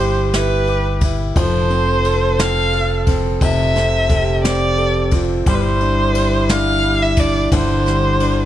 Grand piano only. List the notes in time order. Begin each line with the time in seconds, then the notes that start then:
Already playing: G3 E4
0.00 G4
0.34 E4
0.69 G4
1.03 E4
1.36 F3
1.70 C4
2.06 A4
2.39 C4
2.74 A4
3.08 C4
3.43 C3
3.76 C4
4.10 A4
4.44 C4
4.78 A4
5.13 C4
5.47 G3
5.81 D4
6.14 G3
6.49 D4
6.83 G3
7.18 D4
7.53 D3
7.86 G3
8.21 D4